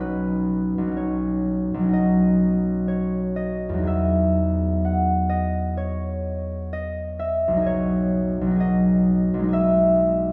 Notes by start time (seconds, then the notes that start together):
Already playing: B1 F#3 C#4 D#4 C#5
0.01 B4
0.78 B1
0.82 F#3
0.87 C#4
0.92 D#4
0.97 C#5
1.74 B1
1.79 F#3
1.83 C#4
1.89 D#4
1.93 D#5
2.88 C#5
3.36 D#5
3.69 E2
3.74 F#3
3.78 D#4
3.83 G#4 E5
4.85 F#5
5.29 D#5
5.77 C#5
6.73 D#5
7.19 E5
7.48 B1
7.53 F#3 D#4
7.62 G#4
7.66 C#5
8.41 B1
8.47 F#3 D#4
8.56 G#4
8.60 D#5
9.34 B1
9.39 G#3
9.43 D#4
9.48 G#4
9.53 E5